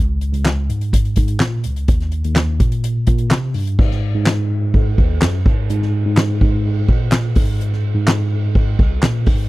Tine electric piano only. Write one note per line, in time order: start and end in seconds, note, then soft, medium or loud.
0.00 0.31 C#2 loud
0.33 0.67 C#2 medium
0.69 1.14 G#2 medium
1.17 1.39 G#2 medium
1.41 1.63 A#2 medium
1.65 1.87 C#2 medium
1.88 2.22 D#2 medium
2.24 2.58 D#2 medium
2.60 3.04 A#2 medium
3.07 3.30 A#2 loud
3.31 3.53 C3 medium
3.54 3.77 G2 medium
3.79 4.12 G#2 loud
4.15 4.94 G#2 loud
4.98 5.20 D#2 loud
5.22 5.44 F#2 medium
5.46 5.68 G#2 medium
5.70 6.03 G#2 loud
6.05 6.39 G#2 loud
6.41 6.85 G#2 medium
6.89 7.33 A#2 medium
7.36 7.92 G#2 medium
7.95 8.75 G#2 loud
8.79 9.01 C2 loud
9.03 9.25 A#2 medium
9.27 9.49 G#2 medium